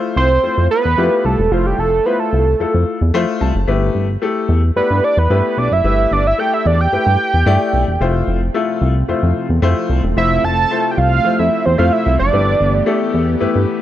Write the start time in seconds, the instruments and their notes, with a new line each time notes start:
Already playing: grand piano A3 E4 F4 C5
0.16 analog synth bass C2, analog synth lead C5
0.43 analog synth bass F2, grand piano A3 E4 F4 C5
0.58 analog synth bass F2
0.71 analog synth lead B4
0.85 analog synth bass E2
0.98 analog synth bass F2, grand piano A3 E4 F4 G4
1.25 analog synth bass C2, analog synth lead A4
1.39 analog synth bass E1
1.52 analog synth bass F1, grand piano A3 E4 F4 C5, analog synth lead F4
1.66 analog synth lead G4
1.78 analog synth bass F1, analog synth lead A4
2.06 grand piano A3 E4 F4 C5, analog synth lead B4
2.19 analog synth lead A4
2.33 analog synth bass C2
2.60 analog synth bass F2, grand piano A3 E4 F4 A4
2.74 analog synth bass F2
3.01 analog synth bass E2
3.14 analog synth bass F2, grand piano A3 E4 F4 C5 E5
3.41 analog synth bass C2, grand piano A5
3.55 analog synth bass F#1
3.67 analog synth bass G1, grand piano A3 E4 G4 B4
3.95 analog synth bass G1
4.22 grand piano A3 E4 G4 A4
4.49 analog synth bass E2
4.76 analog synth bass G2, grand piano A3 E4 G4 D5, analog synth lead B4
4.91 analog synth bass G2
5.04 analog synth lead D5
5.17 analog synth bass E2, analog synth lead B4
5.30 analog synth bass G2, grand piano A3 E4 G4 B4
5.57 analog synth bass B1, analog synth lead D5
5.72 analog synth bass F#1, analog synth lead E5
5.84 analog synth bass G1, grand piano A3 E4 G4 B4
6.11 analog synth bass G1, analog synth lead D5
6.27 analog synth lead E5
6.38 grand piano A3 E4 G4 A4, analog synth lead G5
6.54 analog synth lead E5
6.66 analog synth bass E2, analog synth lead D5
6.81 analog synth lead G5
6.92 analog synth bass G2, grand piano A3 E4 G4 B4
7.07 analog synth bass G2
7.34 analog synth bass E2
7.46 analog synth bass G2, grand piano A3 E4 G4 D5
7.73 analog synth bass B1
7.88 analog synth bass E1
8.01 analog synth bass F1, analog synth pad C3 F3 A3 C4, grand piano A3 E4 F4 C5
8.28 analog synth bass F1
8.54 grand piano A3 E4 F4 A4
8.81 analog synth bass C2
9.08 analog synth bass F2, grand piano A3 E4 F4 C5
9.23 analog synth bass F2
9.50 analog synth bass E2
9.62 analog synth bass F2, grand piano A3 E4 F4 C5
9.89 analog synth bass C2
10.04 analog synth bass E1
10.17 analog synth bass F1, grand piano A3 E4 F4 C5, analog synth lead E5
10.44 analog synth bass F1, analog synth lead A5
10.71 grand piano A3 E4 F4 C5
10.91 analog synth lead G5
10.98 analog synth bass C2, analog synth lead F5
11.24 analog synth bass F2, grand piano A3 E4 F4 C5
11.39 analog synth bass F2, analog synth lead E5
11.65 analog synth bass E2, analog synth lead C5
11.78 analog synth bass F2, grand piano A3 E4 F4 C5, analog synth lead F5
11.92 analog synth lead E5
12.06 analog synth bass C2
12.19 analog synth bass F#1, analog synth lead D5
12.32 analog synth bass G1, analog synth pad E3 B3 G4, grand piano A3 E4 G4 B4
12.60 analog synth bass G1
12.86 grand piano A3 E4 G4 A4
13.14 analog synth bass E2
13.40 analog synth bass G2, grand piano A3 E4 G4 B4
13.55 analog synth bass G2